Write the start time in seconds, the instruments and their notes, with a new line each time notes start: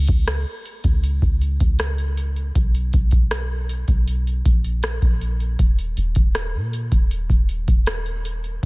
0.07 808-style bass C#2, kick, closed hi-hat
0.28 cross-stick, closed hi-hat
0.65 closed hi-hat
0.84 808-style bass C#2, kick, closed hi-hat
1.04 closed hi-hat
1.22 808-style bass C#2, kick, closed hi-hat
1.42 closed hi-hat
1.60 808-style bass C#2, kick, closed hi-hat
1.79 cross-stick, closed hi-hat
1.98 closed hi-hat
2.17 closed hi-hat
2.36 closed hi-hat
2.55 808-style bass B1, kick, closed hi-hat
2.75 closed hi-hat
2.93 808-style bass B1, kick, closed hi-hat
3.11 kick, closed hi-hat
3.31 cross-stick, closed hi-hat
3.69 closed hi-hat
3.88 808-style bass B1, kick, closed hi-hat
4.08 closed hi-hat
4.27 closed hi-hat
4.45 808-style bass A#1, kick, closed hi-hat
4.64 closed hi-hat
4.83 cross-stick, closed hi-hat
5.02 808-style bass A#1, kick, closed hi-hat
5.21 closed hi-hat
5.40 closed hi-hat
5.59 808-style bass D#1, kick, closed hi-hat
5.79 closed hi-hat
5.97 808-style bass D#1, closed hi-hat
6.15 808-style bass D#1, kick, closed hi-hat
6.35 cross-stick, closed hi-hat
6.54 808-style bass A#2
6.73 closed hi-hat
6.92 808-style bass D#1, kick, closed hi-hat
7.11 closed hi-hat
7.30 808-style bass D#1, kick, closed hi-hat
7.49 closed hi-hat
7.68 808-style bass D#1, kick, closed hi-hat
7.86 cross-stick, closed hi-hat
8.06 closed hi-hat
8.25 closed hi-hat
8.44 closed hi-hat